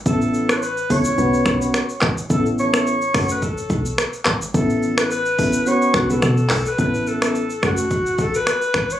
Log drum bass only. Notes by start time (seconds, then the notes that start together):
0.06 A1
0.90 C#2
1.18 B1
1.46 B1
2.02 G#1
2.30 A1
3.15 F#1
3.70 B1
4.27 G#1
4.54 A1
5.39 C#2
5.67 B1
5.94 B1
6.10 B1
6.22 B2
6.51 B1
6.79 A1
7.63 F#1
8.19 B1
8.75 G#1